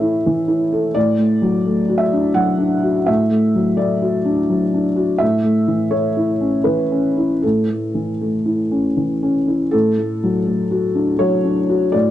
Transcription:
Already playing: A2 E3 A3 A4 C#5 E5
0.01 E4
0.26 E3
0.48 E4
0.72 A4
0.95 A2 D5
1.18 A3
1.42 F#3
1.65 A3
1.89 F#4
1.98 E5
2.13 D4
2.34 F#3 F#5
2.58 D4
2.83 F#4
3.06 A2 E5
3.31 A3
3.55 F#3
3.77 A3 D5
4.02 F#4
4.25 D4
4.50 F#3
4.74 D4
4.96 F#4
5.18 A2 E5
5.44 A3
5.68 E3
5.91 A3 C#5
6.17 E4
6.41 C#4
6.64 E3 B4
6.92 C#4
7.17 E4
7.42 A2 A4
7.70 A3
7.94 E3
8.21 A3
8.46 E4
8.71 C#4
8.97 E3
9.23 C#4
9.48 E4
9.71 A2 A4
9.98 A3
10.23 F#3
10.46 A3
10.71 F#4
10.95 D4
11.19 F#3 C#5
11.44 D4
11.69 F#4
11.92 A2 D5

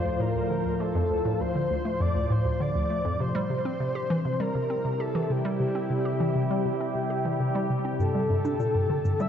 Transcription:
Already playing: A2 F3 D4 F4 C5
0.05 D2
0.20 A2 A#4
0.35 D2
0.50 D3
0.65 D2
0.80 A3 A4
0.95 F2
1.10 D2
1.25 A2
1.40 D2 C5
1.55 D3
1.70 D2
1.85 A3
2.00 F2 D5
2.15 D2
2.30 A2 C5
2.45 D2
2.60 D3 D5
2.75 D2
2.90 A3
3.05 F2
3.20 C3 C5
3.35 G3
3.50 C3
3.60 G3
3.65 C4
3.80 C3
3.94 E4 G4
4.10 E3
4.25 C3
4.40 G3 A#4
4.55 C3
4.65 G4
4.70 C4
4.85 C3
5.00 G4 A4
5.15 E3
5.30 C3 G4
5.45 G3
5.60 C3
5.75 C4
5.90 C3
6.05 G4
6.20 E3
6.36 C3
6.51 G3
6.65 C3
6.80 C4
6.95 C3
7.10 G4
7.25 E3
7.40 C3
7.55 G3
7.70 C3
7.85 C4
8.00 G2 D3 A4 E6, high tom, shaker
8.15 G3
8.23 A#3
8.30 G2
8.36 A5
8.45 D4, high tom, shaker
8.60 A#2, shaker
8.75 G2, high tom
8.90 D3
9.05 G2, shaker
9.20 G3 E5, high tom, shaker

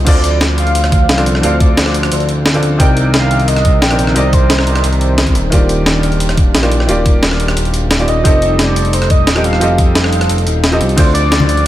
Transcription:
0.05 D2 D3 F3 C4 D4 F4 A4 C5 D5, kick, closed hi-hat, crash
0.24 closed hi-hat
0.41 snare, closed hi-hat
0.58 F5, closed hi-hat
0.67 closed hi-hat
0.75 closed hi-hat
0.84 cross-stick, closed hi-hat
0.92 kick, closed hi-hat
1.09 C2, snare, closed hi-hat
1.17 D3 C4 F4 A4 D5, cross-stick, closed hi-hat
1.26 closed hi-hat
1.35 cross-stick
1.41 D2 D3 C4 F4 A4 D5 F5, closed hi-hat
1.60 D5, kick, closed hi-hat
1.77 snare, closed hi-hat
1.86 cross-stick, snare
1.94 closed hi-hat
2.03 cross-stick, closed hi-hat
2.12 D2, closed hi-hat
2.20 closed hi-hat
2.29 closed hi-hat
2.46 snare, closed hi-hat
2.53 D3 C4 F4 A4 D5, closed hi-hat
2.63 D2, closed hi-hat
2.77 C2 C3 D#3 C4 D#4 A#4 D5 G5, kick, closed hi-hat
2.97 closed hi-hat
3.14 F5, snare, closed hi-hat
3.31 closed hi-hat
3.40 closed hi-hat
3.48 D#5, closed hi-hat
3.56 cross-stick, closed hi-hat
3.65 kick, closed hi-hat
3.82 A#1 G5, snare, closed hi-hat
3.90 C3 C4 D#4 A#4 D5, cross-stick, closed hi-hat
3.99 closed hi-hat
4.07 cross-stick
4.14 C2 C3 C4 D#4 A#4 D5 D#5, closed hi-hat
4.33 C5, kick, closed hi-hat
4.50 snare, closed hi-hat
4.59 cross-stick, snare
4.67 closed hi-hat
4.75 cross-stick, closed hi-hat
4.84 C2, closed hi-hat
4.93 closed hi-hat
5.01 closed hi-hat
5.18 snare, closed hi-hat
5.27 kick, closed hi-hat
5.35 D#1 D4 G4, closed hi-hat
5.50 D#1 D#3 A#3 F4 G4 D5, kick, closed hi-hat
5.69 closed hi-hat
5.86 snare, closed hi-hat
6.03 closed hi-hat
6.12 closed hi-hat
6.20 closed hi-hat
6.29 cross-stick, closed hi-hat
6.37 kick, closed hi-hat
6.55 A#1, snare, closed hi-hat
6.62 D#3 A#3 F4 G4 D5, cross-stick, closed hi-hat
6.72 closed hi-hat
6.80 cross-stick
6.87 D#1 D#3 A#3 F4 G4 D5, closed hi-hat
7.06 kick, closed hi-hat
7.23 snare, closed hi-hat
7.31 cross-stick, snare
7.40 closed hi-hat
7.48 cross-stick, closed hi-hat
7.57 D#1, closed hi-hat
7.65 closed hi-hat
7.74 closed hi-hat
7.91 snare, closed hi-hat
7.98 D#3 A#3 F4 G4 D5, closed hi-hat
8.08 D#1 D#5, closed hi-hat
8.23 F1 F3 G3 C4 D#4 G4 A4, kick, closed hi-hat
8.42 closed hi-hat
8.59 D5, snare, closed hi-hat
8.76 closed hi-hat
8.85 closed hi-hat
8.93 C5, closed hi-hat
9.02 cross-stick, closed hi-hat
9.10 D#5, kick, closed hi-hat
9.27 D#1, snare, closed hi-hat
9.35 F3 C4 G4 A4 D#5 G5, cross-stick, closed hi-hat
9.44 F5, closed hi-hat
9.53 cross-stick
9.59 F1 F3 C4 G4 A4 D#5, closed hi-hat
9.78 kick, closed hi-hat
9.95 snare, closed hi-hat
10.04 cross-stick, snare
10.13 closed hi-hat
10.21 cross-stick, closed hi-hat
10.29 F1, closed hi-hat
10.38 closed hi-hat
10.47 D#1, closed hi-hat
10.64 snare, closed hi-hat
10.71 F3 C4 G4 A4 D#5, closed hi-hat
10.81 C2, closed hi-hat
10.89 closed hi-hat
10.96 D2 D3 F3 C4 D4 F4 A4 C5 D5, kick, closed hi-hat, ride
11.14 D5, closed hi-hat
11.32 snare, closed hi-hat, ride
11.40 high conga
11.49 closed hi-hat
11.57 closed hi-hat

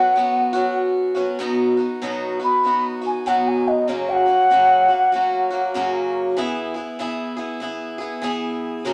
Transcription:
Already playing: F#3 B3 C#4 F#4 F#5
0.16 F#3 B3 C#4 F#4
0.53 F#3 B3 C#4 F#4
1.15 F#3 B3 C#4 F#4
1.39 B2 F#3 B3 D#4 F#4
1.77 B3 D#4 F#4
2.02 B2 F#3 B3 D#4 F#4
2.39 B3 D#4 F#4
2.44 B5
2.64 F#3 B3 D#4 F#4
3.02 B3 D#4 F#4
3.06 G#5
3.26 B2 F#3 B3 D#4 F#4 F#5
3.47 G#5
3.67 D#5
3.87 F#2 C#3 F#3 A#3 C#4 F#4 C#5
4.09 F#5 G5
4.26 F#3 A#3 C#4 F#4
4.50 F#2 C#3 F#3 A#3 C#4 F#4
4.88 F#3 A#3 C#4 F#4
5.12 F#3 A#3 C#4 F#4
5.50 F#3 A#3 C#4 F#4
5.74 F#2 C#3 F#3 A#3 C#4 F#4
6.37 E3 B3 E4 G#4
6.74 B3 E4 G#4
6.99 E3 B3 E4 G#4
7.37 B3 E4 G#4
7.60 E3 B3 E4 G#4
7.98 B3 E4 G#4
8.22 E3 B3 E4 G#4
8.85 F#2 C#3 F#3 A#3 C#4 A#4

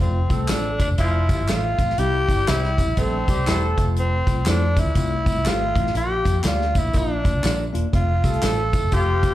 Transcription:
0.00 F1 A3 C4 F4, kick, closed hi-hat
0.29 C2 A3 C4 F4 A4, kick, closed hi-hat, tambourine
0.48 A1 A3 C4 D4 F4 A4 C5, snare, clap, closed hi-hat, tambourine
0.80 A3 C4 D4 F4, kick, closed hi-hat, tambourine
0.89 F1
0.98 F1 F3 A3 C4 E4 F4, kick, closed hi-hat, tambourine
1.29 A3 C4 G4, kick, closed hi-hat, tambourine
1.39 G1
1.48 A1 A3 C4 F4 A4 C5, snare, clap, closed hi-hat, tambourine
1.78 A1 A3 C4 F4, kick, closed hi-hat, tambourine
1.90 snare
1.98 C2 G3 C4 E4 G4, closed hi-hat, tambourine
2.28 G1 G3 C4 E4 G4, kick, closed hi-hat, tambourine
2.47 C2 G3 C4 E4 G4 C5, snare, clap, closed hi-hat, tambourine
2.64 snare
2.78 G3 C4 E4, kick, closed hi-hat, tambourine
2.88 A#1
2.97 A#1 G3 A3 C4 D4 A4, kick, closed hi-hat, tambourine
3.28 G3 C4 G4, kick, closed hi-hat, tambourine
3.38 C2
3.46 E1 G3 A3 C4 E4 G4 A4 C5, snare, clap, closed hi-hat, tambourine
3.77 F1 A3 C4 F4, kick, closed hi-hat, tambourine
3.96 C4, closed hi-hat
4.27 C2 A3 C4 F4, kick, closed hi-hat, tambourine
4.45 F2 A3 C4 D4 E4 F4 A4 C5, snare, clap, closed hi-hat, tambourine
4.76 A3 C4 E4 F4, kick, closed hi-hat, tambourine
4.86 D2
4.95 C2 A3 C4 F4, kick, closed hi-hat, tambourine
5.25 A3 C4 F4, kick, closed hi-hat, tambourine
5.35 C2
5.45 G#1 A3 C4 F4 G4 A4 C5, snare, clap, closed hi-hat, tambourine
5.75 A1 A3 C4 E4, kick, closed hi-hat
5.87 snare
5.94 A#1 A#3 D4 F4 G4, closed hi-hat, tambourine
6.24 F2 A#3 D4 F4, kick, closed hi-hat, tambourine
6.43 D2 A#3 D4 F4 G4 A#4 D5, snare, clap, closed hi-hat, tambourine
6.47 F4
6.61 snare
6.75 A#3 D4 E4, kick, closed hi-hat, tambourine
6.85 A#1
6.93 A#1 A#3 D4 F4, kick, closed hi-hat, tambourine
6.98 D4
7.24 A#3 D4 F4, kick, closed hi-hat, tambourine
7.34 C2
7.43 A#1 A#3 D4 F4 A#4 D5, snare, clap, closed hi-hat, tambourine
7.73 E1 A#3 D4 F4, closed hi-hat
7.93 F1 A3 C4 F4, kick, closed hi-hat
8.23 C2 A3 C4 G4 A4, kick, closed hi-hat, tambourine
8.34 closed hi-hat
8.42 A1 A3 C4 D4 F4 A4 C5, snare, clap, closed hi-hat, tambourine
8.73 A3 C4 E4, kick, snare, closed hi-hat, tambourine
8.83 F1
8.92 F1 F3 A3 C4 F4 G4, kick, closed hi-hat, tambourine
9.22 A3 C4 G4, kick, closed hi-hat, tambourine

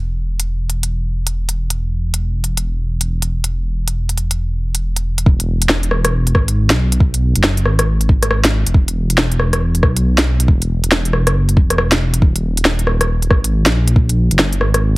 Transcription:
Already playing: E1
0.40 closed hi-hat
0.70 closed hi-hat
0.83 closed hi-hat
1.27 closed hi-hat
1.49 closed hi-hat
1.70 closed hi-hat
2.14 closed hi-hat
2.44 closed hi-hat
2.57 closed hi-hat
3.01 closed hi-hat
3.22 closed hi-hat
3.44 closed hi-hat
3.88 closed hi-hat
4.09 closed hi-hat
4.18 closed hi-hat
4.31 closed hi-hat
4.75 closed hi-hat
4.96 closed hi-hat
5.18 closed hi-hat
5.26 E1, kick
5.40 closed hi-hat
5.62 closed hi-hat
5.69 snare
5.83 closed hi-hat
5.91 cross-stick
6.05 cross-stick, closed hi-hat
6.27 closed hi-hat
6.35 G#1, kick, cross-stick
6.48 closed hi-hat
6.70 B1, snare, closed hi-hat
6.92 closed hi-hat
7.00 kick
7.14 closed hi-hat
7.36 F#1, closed hi-hat
7.44 snare
7.57 closed hi-hat
7.65 G#1, cross-stick
7.79 cross-stick, closed hi-hat
8.01 closed hi-hat
8.09 kick
8.23 cross-stick, closed hi-hat
8.31 cross-stick
8.45 snare, closed hi-hat
8.67 E1, closed hi-hat
8.74 kick
8.88 closed hi-hat
9.10 closed hi-hat
9.18 snare
9.32 closed hi-hat
9.40 cross-stick
9.53 cross-stick, closed hi-hat
9.75 closed hi-hat
9.83 B1, kick, cross-stick
9.97 closed hi-hat
10.18 snare, closed hi-hat
10.40 closed hi-hat
10.48 E1, kick
10.62 closed hi-hat
10.84 closed hi-hat
10.92 snare
11.05 closed hi-hat
11.13 cross-stick
11.27 F#1, cross-stick, closed hi-hat
11.49 closed hi-hat
11.57 E1, kick
11.70 cross-stick, closed hi-hat
11.78 cross-stick
11.92 snare, closed hi-hat
12.14 closed hi-hat
12.22 D#1, kick
12.36 closed hi-hat
12.57 closed hi-hat
12.65 snare
12.79 closed hi-hat
12.87 cross-stick
13.01 cross-stick, closed hi-hat
13.22 closed hi-hat
13.30 G#1, kick, cross-stick
13.44 closed hi-hat
13.66 A#1, snare, closed hi-hat
13.88 closed hi-hat
13.96 kick
14.09 closed hi-hat
14.31 F#1, closed hi-hat
14.39 snare
14.53 closed hi-hat
14.61 G#1, cross-stick
14.74 cross-stick, closed hi-hat

